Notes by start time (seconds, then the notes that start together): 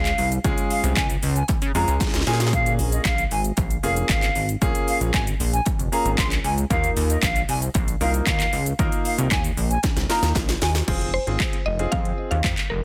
Already playing: C#2 F5
0.05 clap, closed hi-hat, shaker
0.18 C2, open hi-hat, shaker
0.32 closed hi-hat, shaker
0.44 C#2 G#3 C#4 F4 G#4, kick, closed hi-hat, shaker
0.58 closed hi-hat, shaker
0.71 F5, open hi-hat, shaker
0.84 C2, closed hi-hat, shaker
0.97 C#2 G#5, kick, clap, closed hi-hat, shaker
1.10 closed hi-hat, shaker
1.23 C#2, open hi-hat, shaker
1.36 G#5, closed hi-hat, shaker
1.48 kick, clap, closed hi-hat, shaker
1.62 C#3, closed hi-hat, shaker
1.75 F2 G#3 C#4 F4 G#4 A#5, open hi-hat, shaker
1.88 C#2, closed hi-hat, shaker
2.01 C#2, kick, snare, clap, closed hi-hat, shaker
2.07 snare
2.14 C#2, snare, closed hi-hat, shaker
2.20 snare
2.27 A#2 A#3 C#4 F4 G#4 G#5, snare, open hi-hat, shaker
2.33 snare
2.40 snare, closed hi-hat, shaker
2.47 snare
2.53 F5, kick, closed hi-hat, shaker
2.66 closed hi-hat, shaker
2.79 A#1, open hi-hat, shaker
2.92 D#5, closed hi-hat, shaker
3.05 A#1 F5, kick, clap, closed hi-hat, shaker
3.18 closed hi-hat, shaker
3.31 G#1 G#5, open hi-hat, shaker
3.44 closed hi-hat, shaker
3.57 A#1, kick, clap, closed hi-hat, shaker
3.70 closed hi-hat, shaker
3.83 F1 A#3 C#4 F4 G#4 F5, open hi-hat, shaker
3.96 closed hi-hat, shaker
4.09 G#1 F5, kick, clap, closed hi-hat, shaker
4.23 clap, closed hi-hat, shaker
4.35 G#1, open hi-hat, shaker
4.49 closed hi-hat, shaker
4.61 A#1 A#3 C#4 F4 G#4, kick, closed hi-hat, shaker
4.75 closed hi-hat, shaker
4.88 F5, open hi-hat, shaker
5.01 A#1, closed hi-hat, shaker
5.14 G#1 G#5, kick, clap, closed hi-hat, shaker
5.27 closed hi-hat, shaker
5.40 A#1, open hi-hat, shaker
5.53 G#5, closed hi-hat, shaker
5.66 kick, clap, closed hi-hat, shaker
5.79 F1, closed hi-hat, shaker
5.92 A#3 C#4 F4 G#4 A#5, open hi-hat, shaker
6.05 G#1, closed hi-hat, shaker
6.18 A#1 C6, kick, clap, closed hi-hat, shaker
6.32 clap, closed hi-hat, shaker
6.44 C#2 G#5, open hi-hat, shaker
6.58 closed hi-hat, shaker
6.70 D#2 A#3 D#4 F4 A#4 F5, kick, closed hi-hat, shaker
6.84 closed hi-hat, shaker
6.96 D#2, open hi-hat, shaker
7.10 D#5, closed hi-hat, shaker
7.23 A#1 F5, kick, clap, closed hi-hat, shaker
7.36 closed hi-hat, shaker
7.49 C2 G#5, open hi-hat, shaker
7.62 closed hi-hat, shaker
7.75 A#1, kick, clap, closed hi-hat, shaker
7.88 closed hi-hat, shaker
8.01 C2 A#3 D#4 F4 A#4 F5, open hi-hat, shaker
8.14 closed hi-hat, shaker
8.27 D#2 F5, kick, clap, closed hi-hat, shaker
8.40 clap, closed hi-hat, shaker
8.53 C#2, open hi-hat, shaker
8.66 closed hi-hat, shaker
8.79 D#2 A#3 D#4 F4 A#4, kick, closed hi-hat, shaker
8.92 closed hi-hat, shaker
9.05 F5, open hi-hat, shaker
9.18 C2, closed hi-hat, shaker
9.31 D#2 G#5, kick, clap, closed hi-hat, shaker
9.44 closed hi-hat, shaker
9.57 A#1, open hi-hat, shaker
9.70 G#5, closed hi-hat, shaker
9.83 kick, snare, clap, closed hi-hat, shaker
9.96 C2, snare, closed hi-hat, shaker
10.09 A#3 D#4 F4 A#4 A#5, snare, open hi-hat, shaker
10.22 D#2, snare, closed hi-hat, shaker
10.35 A#1, kick, snare, clap, closed hi-hat, shaker
10.49 snare, closed hi-hat, shaker
10.62 D#2 G#5, snare, open hi-hat, shaker
10.75 snare, closed hi-hat, shaker
10.88 F1 C4 F4 G#4, kick, closed hi-hat, crash
11.01 closed hi-hat
11.14 C5
11.27 G#1 C4 F4 G#4, closed hi-hat
11.40 kick, clap, closed hi-hat
11.53 closed hi-hat
11.66 F1 D#5
11.79 C4 F4 G#4, closed hi-hat
11.92 F2 F5, kick, closed hi-hat
12.05 closed hi-hat
12.31 D#2 F5, closed hi-hat
12.44 F2, kick, clap, closed hi-hat
12.57 clap, closed hi-hat
12.70 F1 A#4